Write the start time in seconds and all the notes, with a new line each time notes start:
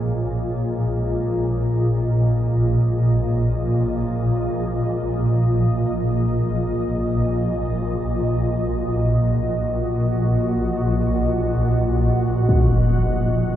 Already playing: A#1 A#2 G#3 A#3 G#4 C#5 D#5
6.72 F#4
8.90 F#5
12.49 impact